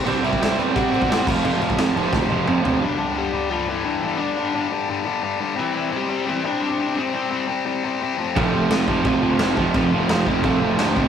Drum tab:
CC |x-x-x-x-x-x-x-x-|x-x-x-x---------|----------------|----------------|
SD |----o-------o---|----o---o-------|----------------|----------------|
T1 |----------------|----------o-----|----------------|----------------|
T2 |----------------|------------o---|----------------|----------------|
FT |----------------|--------------o-|----------------|----------------|
BD |---o----o--o--o-|---o----o-------|----------------|----------------|

CC |----------------|----------------|x---x---x---x---|x---x---x---x---|
SD |----------------|----------------|----o-------o---|----o-------o---|
T1 |----------------|----------------|----------------|----------------|
T2 |----------------|----------------|----------------|----------------|
FT |----------------|----------------|----------------|----------------|
BD |----------------|----------------|o-----o-o-----o-|o-----o-o-----o-|